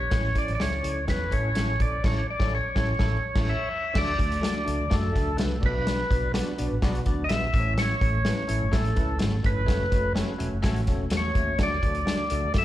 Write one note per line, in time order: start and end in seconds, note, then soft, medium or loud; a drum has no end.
0.00 0.38 C#5 loud
0.10 0.31 A1 loud
0.10 0.27 C#4 medium
0.10 0.27 E4 medium
0.10 0.27 A4 medium
0.10 0.27 C#5 medium
0.10 kick loud
0.10 snare loud
0.10 closed hi-hat medium
0.35 0.52 C#4 medium
0.35 0.51 E4 medium
0.35 0.52 A4 medium
0.35 0.52 C#5 medium
0.35 0.53 D5 medium
0.35 kick medium
0.35 closed hi-hat medium
0.48 0.58 A1 loud
0.48 closed hi-hat soft
0.55 0.61 D5 medium
0.60 0.80 C#2 medium
0.60 0.77 C#4 medium
0.60 0.76 E4 medium
0.60 0.76 A4 medium
0.60 1.05 C#5 medium
0.60 0.76 E5 medium
0.60 snare loud
0.60 closed hi-hat medium
0.83 1.04 C#2 medium
0.83 1.00 C#4 medium
0.83 1.00 E4 medium
0.83 1.00 A4 medium
0.83 1.00 C#5 medium
0.83 closed hi-hat medium
1.07 1.33 E2 loud
1.07 1.24 C#4 medium
1.07 1.24 E4 medium
1.07 1.24 A4 medium
1.07 1.33 B4 medium
1.07 1.24 C#5 medium
1.07 kick medium
1.07 snare medium
1.07 closed hi-hat medium
1.31 1.52 A2 medium
1.31 1.48 C#4 loud
1.31 1.48 E4 medium
1.31 1.48 A4 medium
1.31 1.48 C#5 loud
1.31 1.82 C#5 loud
1.31 kick medium
1.31 closed hi-hat medium
1.55 1.76 A1 loud
1.55 1.72 C#4 loud
1.55 1.72 E4 medium
1.55 1.72 A4 medium
1.55 1.72 C#5 loud
1.55 snare loud
1.55 closed hi-hat medium
1.80 2.00 A#1 medium
1.80 1.96 C#4 medium
1.80 1.96 E4 medium
1.80 1.96 A4 medium
1.80 1.96 C#5 medium
1.80 2.05 D5 medium
1.80 kick medium
1.80 closed hi-hat medium
2.04 2.20 A1 loud
2.04 2.20 C#4 medium
2.04 2.20 E4 medium
2.04 2.20 A4 medium
2.04 2.20 C#5 medium
2.04 2.27 C#5 medium
2.04 kick loud
2.04 snare loud
2.04 crash medium
2.30 2.54 D5 medium
2.40 2.56 A1 loud
2.40 2.56 C#4 medium
2.40 2.57 E4 loud
2.40 2.57 A4 medium
2.40 2.57 C#5 medium
2.40 kick loud
2.40 snare medium
2.55 3.69 C#5 medium
2.75 2.92 A1 loud
2.75 2.92 C#4 loud
2.75 2.92 E4 medium
2.75 2.92 A4 medium
2.75 2.92 C#5 medium
2.75 kick loud
2.75 snare loud
2.99 3.16 A1 loud
2.99 3.16 C#4 loud
2.99 3.16 E4 loud
2.99 3.16 A4 loud
2.99 3.16 C#5 loud
2.99 kick loud
2.99 snare loud
3.35 3.52 A1 loud
3.35 3.52 C#4 loud
3.35 3.52 E4 medium
3.35 3.52 A4 medium
3.35 kick loud
3.35 snare loud
3.35 crash medium
3.49 3.98 E5 loud
3.93 4.15 D2 loud
3.93 4.11 A3 medium
3.93 4.11 D4 medium
3.93 4.11 F#4 medium
3.93 4.11 A4 medium
3.93 4.11 D5 loud
3.93 kick loud
3.93 snare loud
3.93 crash loud
3.98 4.95 D5 medium
4.18 4.49 D2 loud
4.18 4.35 A3 medium
4.18 4.35 D4 medium
4.18 4.35 F#4 medium
4.18 4.35 A4 medium
4.18 4.35 D5 medium
4.18 kick medium
4.18 closed hi-hat medium
4.32 closed hi-hat medium
4.41 4.59 A3 medium
4.41 4.59 D4 medium
4.41 4.58 F#4 medium
4.41 4.58 A4 medium
4.41 4.59 D5 medium
4.41 snare loud
4.41 closed hi-hat loud
4.65 4.77 C#2 medium
4.65 4.83 A3 medium
4.65 4.82 D4 medium
4.65 4.82 F#4 medium
4.65 4.82 A4 medium
4.65 4.82 D5 medium
4.65 closed hi-hat medium
4.79 4.89 D2 medium
4.90 5.11 F#2 medium
4.90 5.07 A3 loud
4.90 5.07 D4 medium
4.90 5.07 F#4 medium
4.90 5.07 A4 medium
4.90 5.07 D5 loud
4.90 kick loud
4.90 snare loud
4.90 closed hi-hat medium
4.94 5.37 A4 medium
5.12 5.35 C#2 medium
5.12 5.30 A3 medium
5.12 5.30 D4 medium
5.12 5.30 F#4 medium
5.12 5.30 A4 medium
5.12 5.30 E5 medium
5.12 kick medium
5.12 snare soft
5.12 closed hi-hat medium
5.37 5.59 C2 medium
5.37 5.54 A3 medium
5.37 5.54 D4 medium
5.37 5.54 F#4 medium
5.37 5.54 A4 medium
5.37 5.54 B4 medium
5.37 snare loud
5.37 closed hi-hat medium
5.60 6.02 B1 loud
5.60 6.00 B3 medium
5.60 6.00 D4 medium
5.60 6.00 F#4 medium
5.60 6.00 B4 medium
5.60 6.00 D5 medium
5.60 kick loud
5.60 crash medium
5.66 6.32 B4 loud
5.87 snare loud
5.87 closed hi-hat medium
6.10 6.40 B1 medium
6.10 6.27 B3 medium
6.10 6.27 D4 medium
6.10 6.27 F#4 medium
6.10 6.27 B4 medium
6.10 6.27 D5 medium
6.10 kick medium
6.10 closed hi-hat medium
6.34 6.51 B3 medium
6.34 6.51 D4 medium
6.34 6.51 F#4 medium
6.34 6.51 B4 medium
6.34 6.51 D5 loud
6.34 snare loud
6.34 closed hi-hat loud
6.58 6.69 B1 medium
6.58 6.75 B3 medium
6.58 6.74 D4 medium
6.58 6.74 F#4 medium
6.58 6.75 B4 medium
6.58 6.75 D5 loud
6.58 closed hi-hat medium
6.71 6.81 A1 medium
6.82 7.02 B1 loud
6.82 6.99 B3 loud
6.82 6.99 D4 loud
6.82 6.99 F#4 loud
6.82 6.99 B4 loud
6.82 6.99 D5 loud
6.82 kick loud
6.82 snare loud
6.82 closed hi-hat medium
6.95 closed hi-hat soft
7.06 7.26 D2 medium
7.06 7.22 B3 medium
7.06 7.22 D4 medium
7.06 7.22 F#4 medium
7.06 7.22 B4 medium
7.06 7.23 D5 loud
7.06 kick medium
7.06 closed hi-hat medium
7.24 7.31 D#5 medium
7.29 7.50 A#1 medium
7.29 7.46 B3 medium
7.29 7.46 D4 medium
7.29 7.46 F#4 medium
7.29 7.46 B4 medium
7.29 7.74 E5 loud
7.29 7.46 E5 medium
7.29 snare loud
7.29 closed hi-hat medium
7.53 7.93 A1 loud
7.53 7.92 A3 medium
7.53 7.92 C#4 medium
7.53 7.92 E4 medium
7.53 7.92 A4 medium
7.53 7.59 C5 medium
7.53 kick loud
7.53 closed hi-hat medium
7.59 7.95 C#5 medium
7.78 8.77 C#5 loud
7.78 snare loud
7.78 closed hi-hat loud
8.01 8.31 A1 loud
8.01 8.17 A3 medium
8.01 8.18 C#4 medium
8.01 8.18 E4 medium
8.01 8.18 A4 medium
8.01 8.17 C#5 medium
8.01 kick loud
8.01 closed hi-hat medium
8.25 8.42 A3 medium
8.25 8.42 C#4 medium
8.25 8.42 E4 medium
8.25 8.42 A4 medium
8.25 8.42 B4 medium
8.25 snare loud
8.25 closed hi-hat medium
8.48 8.59 A1 loud
8.48 8.65 A3 medium
8.48 8.65 C#4 medium
8.48 8.65 E4 medium
8.48 8.65 A4 medium
8.48 8.65 C#5 loud
8.48 closed hi-hat medium
8.62 8.71 G1 medium
8.72 8.93 A1 loud
8.72 8.89 A3 loud
8.72 8.89 C#4 medium
8.72 8.89 E4 medium
8.72 8.89 A4 medium
8.72 9.19 A4 medium
8.72 8.89 C#5 loud
8.72 kick loud
8.72 snare loud
8.72 closed hi-hat medium
8.85 closed hi-hat soft
8.96 9.17 C#2 loud
8.96 9.13 A3 medium
8.96 9.13 C#4 medium
8.96 9.13 E4 medium
8.96 9.13 A4 medium
8.96 9.13 B4 medium
8.96 kick medium
8.96 snare soft
8.96 closed hi-hat medium
9.18 9.41 G#1 loud
9.18 9.36 A3 medium
9.18 9.36 C#4 medium
9.18 9.36 E4 medium
9.18 9.36 A4 medium
9.18 9.36 C#5 medium
9.18 snare loud
9.18 closed hi-hat loud
9.43 9.64 G1 medium
9.43 9.60 A3 medium
9.43 9.60 C#4 medium
9.43 9.60 E4 medium
9.43 9.60 A4 medium
9.43 10.13 B4 loud
9.43 9.60 C#5 medium
9.43 kick loud
9.43 closed hi-hat medium
9.66 9.88 F#1 medium
9.66 9.84 A3 medium
9.66 9.84 C#4 medium
9.66 9.84 F#4 medium
9.66 9.84 A4 medium
9.66 9.84 C#5 loud
9.66 kick loud
9.66 snare loud
9.66 closed hi-hat medium
9.91 10.21 F#1 medium
9.91 10.08 A3 medium
9.91 10.08 C#4 medium
9.91 10.08 F#4 medium
9.91 10.08 A4 medium
9.91 10.08 C#5 medium
9.91 kick medium
9.91 closed hi-hat medium
10.15 10.32 A3 medium
10.15 10.32 C#4 medium
10.15 10.32 F#4 medium
10.15 10.32 A4 medium
10.15 10.32 C#5 loud
10.15 snare loud
10.15 closed hi-hat loud
10.38 10.50 E1 medium
10.38 10.56 A3 medium
10.38 10.55 C#4 medium
10.38 10.55 F#4 medium
10.38 10.55 A4 medium
10.38 10.55 C#5 loud
10.38 closed hi-hat medium
10.52 10.62 F#1 medium
10.62 10.84 A1 loud
10.62 10.79 A3 loud
10.62 10.79 C#4 loud
10.62 10.79 F#4 loud
10.62 10.80 A4 loud
10.62 10.80 C#5 loud
10.62 kick medium
10.62 snare loud
10.62 closed hi-hat medium
10.76 closed hi-hat soft
10.87 11.07 E1 medium
10.87 11.04 A3 medium
10.87 11.04 C#4 medium
10.87 11.04 F#4 medium
10.87 11.04 A4 medium
10.87 11.04 C#5 loud
10.87 kick medium
10.87 snare soft
10.87 closed hi-hat medium
11.10 11.31 E2 loud
11.10 11.28 A3 medium
11.10 11.28 C#4 medium
11.10 11.28 F#4 medium
11.10 11.28 A4 medium
11.10 11.28 C#5 medium
11.10 snare loud
11.10 closed hi-hat loud
11.17 11.59 C#5 loud
11.35 11.55 D#2 medium
11.35 11.52 A3 medium
11.35 11.52 C#4 medium
11.35 11.52 F#4 medium
11.35 11.52 A4 medium
11.35 11.52 E5 medium
11.35 kick medium
11.35 closed hi-hat medium
11.58 11.79 D2 loud
11.58 11.75 A3 medium
11.58 11.75 D4 medium
11.58 11.75 F#4 medium
11.58 11.75 A4 medium
11.58 11.75 D5 loud
11.58 kick loud
11.58 snare loud
11.58 closed hi-hat medium
11.63 12.53 D5 loud
11.82 12.12 D2 loud
11.82 11.99 A3 medium
11.82 11.99 D4 medium
11.82 11.99 F#4 medium
11.82 11.99 A4 medium
11.82 11.99 D5 medium
11.82 kick medium
11.82 closed hi-hat medium
11.95 closed hi-hat soft
12.05 12.23 A3 medium
12.05 12.23 D4 medium
12.05 12.22 F#4 medium
12.05 12.23 A4 medium
12.05 12.23 D5 medium
12.05 snare loud
12.05 closed hi-hat loud
12.30 12.41 C#2 medium
12.30 12.47 A3 medium
12.30 12.47 D4 medium
12.30 12.47 F#4 medium
12.30 12.47 A4 medium
12.30 12.47 D5 medium
12.30 closed hi-hat medium
12.44 12.53 D2 medium
12.54 12.65 F#2 medium
12.54 12.65 A3 loud
12.54 12.65 D4 medium
12.54 12.65 F#4 medium
12.54 12.65 A4 medium
12.54 12.65 D5 loud
12.54 kick loud
12.54 snare medium
12.54 closed hi-hat medium
12.58 12.65 E5 loud